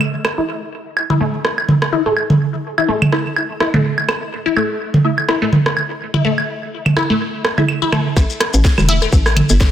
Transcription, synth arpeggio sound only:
0.38 E4
1.10 E4
1.20 A3
1.93 E4
2.06 A3
2.78 E4
2.88 A3
3.60 E4
3.74 A3
4.46 E4
4.57 A3
5.29 E4
5.42 A3
6.14 E4
6.25 A3
6.97 E4
7.10 A3
7.82 E4
7.92 A3
8.17 A3
8.89 E4
9.02 A3

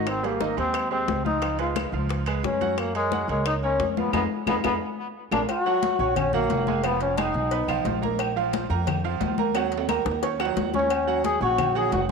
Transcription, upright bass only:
Already playing: G#1
0.57 D#2
1.08 C#2
1.92 C#2
2.43 F#2
3.28 C#2
3.79 F2
4.13 F2
4.46 F2
4.64 F2
5.31 A#1
5.99 A#1
6.49 F1
7.34 B1
7.68 B1
7.85 A#1
8.70 F2
9.21 D#2
10.05 D#2
10.56 D#2
11.41 A#1
11.92 F1

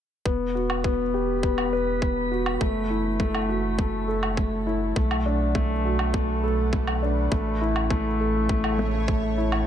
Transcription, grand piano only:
0.26 B3
0.55 F#4
0.85 B3
1.14 G4
1.44 B3
1.73 B4
2.02 B3
2.32 F#4
2.61 A3
2.90 E4
3.20 A3
3.49 F#4
3.78 A3
4.08 A4
4.38 A3
4.67 E4
4.96 A3
5.26 D4
5.55 A3
5.85 F#4
6.14 A3
6.44 A4
6.73 A3
7.03 D4
7.32 A3
7.61 E4
7.91 A3
8.20 A4
8.49 A3
8.79 A3
9.08 A3
9.38 E4

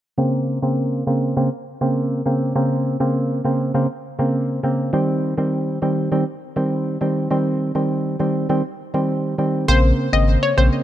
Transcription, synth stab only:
0.18 C#3 A#3 C4
0.62 C#3 A#3 C4
1.07 C#3 A#3 C4
1.36 C#3 A#3 C4
1.81 C#3 A#3 C4
2.26 C#3 A#3 C4
2.55 C#3 A#3 C4
3.00 C#3 A#3 C4
3.44 C#3 A#3 C4
3.74 C#3 A#3 C4
4.19 C#3 A#3 C4
4.63 C#3 A#3 C4
4.93 D#3 G3 C4
5.37 D#3 G3 C4
5.82 D#3 G3 C4
6.12 D#3 G3 C4
6.56 D#3 G3 C4
7.01 D#3 G3 C4
7.31 D#3 G3 C4
7.75 D#3 G3 C4
8.20 D#3 G3 C4
8.49 D#3 G3 C4
8.94 D#3 G3 C4
9.38 D#3 G3 C4
9.68 C#3 A#3 C4
10.13 C#3 A#3 C4
10.57 C#3 A#3 C4

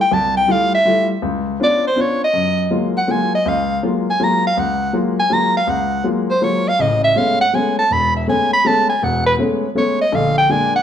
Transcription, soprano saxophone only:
0.01 G5
0.14 A5
0.37 G5
0.51 F5
0.75 E5
1.63 D5
1.87 C5
2.01 C#5
2.24 D#5
2.98 F#5
3.11 G#5
3.35 D#5
3.48 F5
4.10 G#5
4.24 A#5
4.47 F5
4.59 F#5
5.20 G#5
5.33 A#5
5.57 F5
5.70 F#5
6.31 C5
6.44 C#5
6.68 F5
6.81 D#5
7.04 E5
7.18 F5
7.41 F#5
7.55 G#5
7.79 A5
7.93 B5
8.17 E5
8.29 G#5
8.53 B5
8.67 A5
8.90 G#5
9.04 F#5
9.27 B4
9.78 C#5
10.01 D#5
10.15 F5
10.38 G5
10.51 G#5
10.76 F#5

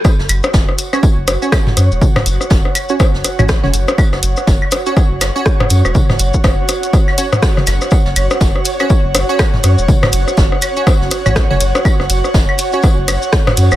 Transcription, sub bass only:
0.19 F#1
0.29 F#1
0.54 F#1
1.18 F#1
1.77 F#2
1.91 E1
2.16 F#1
2.26 F#1
2.51 F#1
3.14 F#1
3.39 A1
3.64 E1
3.74 F#1
4.13 F#1
4.23 F#1
4.47 F#1
5.11 F#1
5.70 F#2
5.85 E1
6.09 F#1
6.19 F#1
6.44 F#1
7.67 F#1
8.06 F#1
8.16 F#1
8.41 F#1
9.05 F#1
9.64 F#2
9.78 E1
10.03 F#1
10.13 F#1
10.38 F#1
11.01 F#1
11.26 A1
11.51 E1
11.61 F#1
12.00 F#1
12.10 F#1
12.34 F#1
12.98 F#1
13.57 F#2
13.72 E1

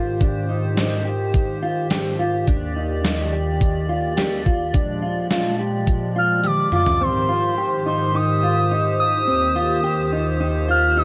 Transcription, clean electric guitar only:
Already playing: F4
0.21 D4
0.49 D#4
0.77 D#4
1.05 G4
1.63 F4
1.91 G4
2.19 F4
2.47 D4
2.76 D#4
3.05 D#4
3.33 G4
3.89 F4
4.17 G4
4.46 F4
4.74 D4
5.02 F4
5.31 F4
5.59 G4
6.16 F4
6.44 G4
6.72 F4
7.01 C4
7.29 F4
7.58 G4
7.86 D#4
8.15 D#4
8.43 F4
8.71 D#4
9.28 C4
9.56 F4
9.84 G4
10.12 D#4
10.40 D#4
10.69 F4
10.97 D#4

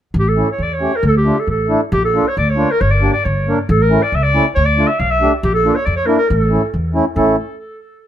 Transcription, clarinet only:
0.19 G4
0.28 A4
0.51 C#5
0.62 D5
0.73 C#5
0.96 A#4
1.06 A4
1.17 G4
1.39 A4
1.50 A4
1.93 G4
2.04 A4
2.28 C#5
2.38 D5
2.50 C#5
2.71 A#4
2.81 C#5
2.91 D5
3.13 D5
3.24 C#5
3.70 A4
3.82 A#4
4.02 D5
4.15 E5
4.23 D5
4.55 C#5
4.65 D5
4.87 E5
4.99 F5
5.10 E5
5.43 G4
5.54 A4
5.75 C#5
5.86 D5
5.96 C#5
6.06 A#4
6.18 A#4
6.29 A#4
6.40 A4
7.16 A4

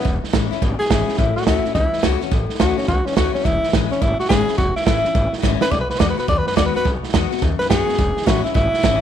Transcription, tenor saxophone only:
Already playing: B3
0.79 G#4
1.18 E4
1.36 F#4
1.46 E4
1.74 E4
2.59 F#4
2.78 C#4
2.88 F#4
3.06 C#4
3.17 F#4
3.35 C#4
3.45 E4
3.91 C#4
4.02 E4
4.20 F#4
4.29 G#4
4.57 F#4
4.76 E4
4.86 E4
5.62 B4
5.71 D5
5.81 B4
5.91 B4
6.00 D5
6.10 B4
6.19 B4
6.29 D5
6.38 B4
6.47 B4
6.57 D5
6.66 B4
6.76 B4
7.59 B4
7.70 G#4
8.26 F#4
8.44 E4
8.55 E4

